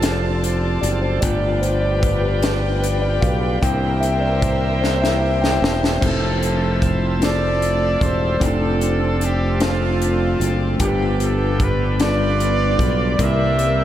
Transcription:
0.00 0.79 F1 medium
0.00 1.19 F3 medium
0.00 1.25 F3 soft
0.00 1.19 C4 soft
0.00 1.25 C4 soft
0.00 1.19 D4 soft
0.00 1.25 E4 medium
0.00 0.38 F4 medium
0.00 1.25 G4 medium
0.00 1.23 A4 medium
0.00 1.25 A4 medium
0.00 1.19 C5 medium
0.00 3.59 D5 medium
0.00 1.19 A5 medium
0.00 snare medium
0.00 closed hi-hat medium
0.44 closed hi-hat soft
0.81 1.20 F#1 medium
0.81 1.03 D5 medium
0.81 closed hi-hat soft
1.02 1.23 C5 medium
1.20 3.18 G1 loud
1.20 3.59 F3 medium
1.20 3.57 A3 medium
1.20 3.58 B3 soft
1.20 3.59 B3 medium
1.20 3.59 D4 medium
1.20 3.58 F4 medium
1.20 3.59 G4 medium
1.20 3.60 B4 medium
1.20 1.40 D5 medium
1.20 5.98 G5 medium
1.20 kick medium
1.20 closed hi-hat medium
1.42 1.61 D5 medium
1.62 1.83 C5 medium
1.62 closed hi-hat soft
1.81 2.03 D5 medium
2.01 2.23 B4 medium
2.01 kick medium
2.01 closed hi-hat soft
2.22 2.60 G4 medium
2.42 snare medium
2.42 closed hi-hat medium
2.82 3.03 B4 medium
2.82 closed hi-hat soft
3.02 3.23 D5 medium
3.21 3.59 B1 medium
3.21 3.63 F5 medium
3.21 kick medium
3.21 closed hi-hat soft
3.61 5.58 C2 loud
3.61 5.98 E3 medium
3.61 4.15 A#3 medium
3.61 5.98 A#3 medium
3.61 5.98 C4 medium
3.61 4.15 D4 soft
3.61 4.16 E4 medium
3.61 5.98 G4 medium
3.61 6.00 A#4 medium
3.61 6.00 C5 medium
3.61 6.00 E5 medium
3.61 4.04 G5 loud
3.61 kick loud
3.61 closed hi-hat medium
4.01 4.22 E5 medium
4.01 closed hi-hat soft
4.21 4.42 D5 medium
4.41 4.80 C5 medium
4.41 kick medium
4.41 closed hi-hat soft
4.81 5.02 C5 medium
4.81 snare soft
5.02 5.20 E5 medium
5.02 snare soft
5.21 5.40 E5 medium
5.42 5.98 G5 medium
5.42 snare medium
5.62 5.99 E1 medium
5.62 snare medium
5.84 snare medium
6.00 7.97 F1 medium
6.00 6.79 F3 medium
6.00 8.37 F3 medium
6.00 6.07 G#3 medium
6.00 6.79 C4 medium
6.00 8.37 C4 soft
6.00 6.79 E4 medium
6.00 6.08 G4 soft
6.00 6.79 C5 medium
6.00 8.37 E5 soft
6.00 kick medium
6.00 crash medium
6.05 6.81 A3 medium
6.05 7.19 C4 medium
6.05 7.19 E4 medium
6.05 6.80 A4 medium
6.05 8.39 A4 medium
6.43 closed hi-hat soft
6.82 7.23 C5 medium
6.82 kick medium
6.82 closed hi-hat soft
7.19 7.98 A3 medium
7.19 7.98 C4 medium
7.19 7.98 E4 soft
7.19 7.99 F4 soft
7.19 7.99 C5 medium
7.19 closed hi-hat medium
7.23 8.38 A4 medium
7.23 8.03 D5 medium
7.23 snare medium
7.62 closed hi-hat soft
8.01 8.38 E1 medium
8.01 8.42 C5 medium
8.01 kick medium
8.01 closed hi-hat soft
8.40 10.36 F1 medium
8.40 10.76 F3 soft
8.40 9.18 A3 medium
8.40 10.76 C4 medium
8.40 9.18 C4 medium
8.40 10.76 D4 soft
8.40 9.18 D4 medium
8.40 8.47 E4 medium
8.40 10.76 A4 medium
8.40 9.18 C5 medium
8.40 kick medium
8.40 closed hi-hat medium
8.44 9.58 C4 medium
8.44 9.58 D4 medium
8.44 9.22 F4 medium
8.44 9.22 A4 medium
8.81 closed hi-hat soft
9.21 9.62 G4 medium
9.21 closed hi-hat soft
9.59 10.37 A3 medium
9.59 10.37 C4 soft
9.59 10.38 D4 soft
9.59 10.38 F4 medium
9.59 10.51 F4 medium
9.59 10.38 C5 medium
9.59 snare medium
9.59 closed hi-hat medium
9.63 10.78 A3 medium
9.63 10.78 C4 medium
10.02 closed hi-hat soft
10.40 10.77 F#1 medium
10.40 closed hi-hat soft
10.78 12.75 G1 medium
10.78 11.95 G2 medium
10.78 13.15 F3 medium
10.78 11.56 G3 medium
10.78 10.87 A#3 soft
10.78 11.56 B3 medium
10.78 11.97 B3 medium
10.78 11.57 D4 medium
10.78 13.15 D4 medium
10.78 11.97 D4 medium
10.78 11.57 F4 medium
10.78 13.15 G4 medium
10.78 11.18 G4 medium
10.78 10.86 A#4 medium
10.78 kick medium
10.78 closed hi-hat medium
10.87 13.19 B3 soft
10.87 11.61 B4 medium
11.20 11.61 A4 medium
11.20 closed hi-hat soft
11.60 12.01 B4 medium
11.60 kick medium
11.60 closed hi-hat soft
11.99 12.77 G3 medium
11.99 12.77 B3 medium
11.99 12.77 D4 medium
11.99 12.77 F4 soft
11.99 12.06 A4 soft
11.99 13.20 D5 loud
11.99 snare medium
11.99 closed hi-hat medium
12.03 13.17 F4 medium
12.03 13.17 B4 medium
12.07 12.81 B4 medium
12.40 closed hi-hat soft
12.79 13.16 B1 medium
12.79 kick medium
12.79 closed hi-hat soft
13.18 13.84 C2 medium
13.18 13.84 C3 medium
13.18 13.84 E3 medium
13.18 13.84 G3 medium
13.18 13.84 A#3 soft
13.18 13.84 A#3 medium
13.18 13.84 C4 soft
13.18 13.84 C4 medium
13.18 13.26 D#4 medium
13.18 13.84 G4 medium
13.18 13.84 A#4 medium
13.18 kick medium
13.18 closed hi-hat medium
13.22 13.84 E4 medium
13.22 13.84 G4 medium
13.22 13.84 A#4 medium
13.22 13.84 E5 medium
13.59 closed hi-hat soft

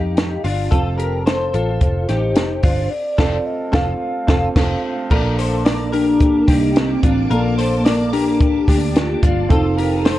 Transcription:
0.00 0.36 F2 medium
0.00 0.42 D#4 medium
0.00 0.41 G4 medium
0.00 0.40 F5 loud
0.17 snare loud
0.17 closed hi-hat medium
0.44 0.68 G1 medium
0.44 0.73 D4 medium
0.44 0.71 F4 medium
0.44 open hi-hat medium
0.71 1.50 F1 loud
0.71 2.87 C4 medium
0.71 2.87 F4 medium
0.71 0.98 F4 medium
0.71 0.97 A4 loud
0.71 2.88 A4 medium
0.71 kick medium
0.71 closed hi-hat medium
0.98 1.26 G4 medium
0.98 1.26 A#4 medium
0.98 closed hi-hat medium
1.26 1.52 A4 medium
1.26 1.54 C5 medium
1.26 1.78 C5 medium
1.26 snare loud
1.26 closed hi-hat medium
1.54 1.78 A1 medium
1.54 2.06 F4 medium
1.54 2.06 A4 medium
1.54 closed hi-hat medium
1.81 2.05 F1 medium
1.81 2.92 C5 loud
1.81 kick medium
1.81 closed hi-hat medium
2.09 2.36 A1 loud
2.09 2.61 D#4 medium
2.09 2.61 G4 medium
2.09 snare soft
2.09 closed hi-hat medium
2.36 2.60 F1 loud
2.36 snare loud
2.36 closed hi-hat medium
2.63 2.87 G1 medium
2.63 2.91 D4 medium
2.63 2.91 F4 medium
2.63 kick loud
2.63 open hi-hat medium
2.90 3.47 D5 loud
3.18 3.38 F1 medium
3.18 3.37 C4 medium
3.18 3.38 F4 medium
3.18 3.37 A4 medium
3.18 3.38 A4 loud
3.18 kick medium
3.18 snare loud
3.18 crash medium
3.46 3.74 D#5 medium
3.72 3.92 F1 loud
3.72 3.91 C4 medium
3.72 3.92 F4 loud
3.72 3.92 F4 medium
3.72 3.92 A4 medium
3.72 4.80 F5 loud
3.72 kick loud
3.72 snare loud
4.27 4.47 F1 loud
4.27 4.47 C4 loud
4.27 4.47 F4 medium
4.27 4.48 F4 medium
4.27 4.47 A4 medium
4.27 4.48 A4 medium
4.27 kick loud
4.27 snare loud
4.56 4.75 F1 loud
4.56 4.75 C4 loud
4.56 4.75 F4 medium
4.56 4.76 A4 medium
4.56 kick loud
4.56 snare loud
4.56 crash medium
5.10 6.44 A#1 loud
5.10 7.26 A#3 medium
5.10 9.46 A#3 medium
5.10 7.26 D4 medium
5.10 6.24 D4 medium
5.10 5.39 F4 medium
5.10 7.27 A4 medium
5.10 5.38 A#4 loud
5.10 9.46 A5 medium
5.10 9.46 D6 medium
5.10 kick loud
5.10 crash medium
5.38 5.66 A4 medium
5.38 5.65 C5 medium
5.38 hi-hat pedal medium
5.38 open hi-hat medium
5.65 5.91 A#4 medium
5.65 5.92 D5 medium
5.65 snare loud
5.65 hi-hat pedal medium
5.65 open hi-hat medium
5.92 6.79 D4 loud
5.92 6.45 G4 medium
5.92 6.45 A#4 medium
5.92 hi-hat pedal medium
5.92 open hi-hat medium
6.20 8.91 A#3 medium
6.20 kick medium
6.20 hi-hat pedal medium
6.20 open hi-hat medium
6.48 6.95 C2 loud
6.48 7.00 D#4 medium
6.48 7.00 G4 medium
6.48 kick medium
6.48 snare soft
6.48 hi-hat pedal medium
6.48 open hi-hat medium
6.76 7.33 C4 loud
6.76 snare loud
6.76 hi-hat pedal medium
6.76 open hi-hat loud
7.03 7.26 A1 medium
7.03 7.31 D4 medium
7.03 7.30 F4 medium
7.03 kick loud
7.03 hi-hat pedal medium
7.03 open hi-hat medium
7.30 8.64 A#1 loud
7.30 9.46 A#3 medium
7.30 8.14 A#3 medium
7.30 9.47 D4 medium
7.30 7.58 F4 medium
7.30 9.47 A4 medium
7.30 7.57 A#4 loud
7.30 hi-hat pedal medium
7.30 open hi-hat medium
7.58 7.85 A4 medium
7.58 7.85 C5 medium
7.58 hi-hat pedal medium
7.58 open hi-hat medium
7.85 8.11 A#4 medium
7.85 8.12 D5 medium
7.85 snare loud
7.85 hi-hat pedal medium
7.85 open hi-hat medium
8.13 9.23 D4 loud
8.13 8.65 G4 medium
8.13 8.64 A#4 medium
8.13 hi-hat pedal medium
8.13 open hi-hat medium
8.40 kick loud
8.40 hi-hat pedal medium
8.40 open hi-hat medium
8.68 9.15 D2 loud
8.68 9.20 D4 medium
8.68 9.20 G4 medium
8.68 kick medium
8.68 snare soft
8.68 hi-hat pedal medium
8.68 open hi-hat medium
8.95 9.46 F4 loud
8.95 snare loud
8.95 hi-hat pedal medium
8.95 open hi-hat medium
9.23 9.46 G1 medium
9.23 9.51 D4 medium
9.23 9.50 F4 medium
9.23 kick loud
9.23 hi-hat pedal medium
9.23 open hi-hat medium
9.49 10.19 F1 loud
9.49 10.19 C4 medium
9.49 10.19 D#4 loud
9.49 10.19 F4 medium
9.49 9.78 F4 medium
9.49 10.19 A4 medium
9.49 9.77 A4 loud
9.49 10.19 A4 medium
9.49 10.19 F5 medium
9.49 10.19 D#6 medium
9.49 kick loud
9.49 hi-hat pedal medium
9.49 open hi-hat medium
9.77 10.06 G4 medium
9.77 10.05 A#4 medium
9.77 hi-hat pedal medium
9.77 open hi-hat medium
10.05 10.19 A4 medium
10.05 10.19 C5 medium
10.05 snare loud
10.05 hi-hat pedal medium
10.05 open hi-hat medium

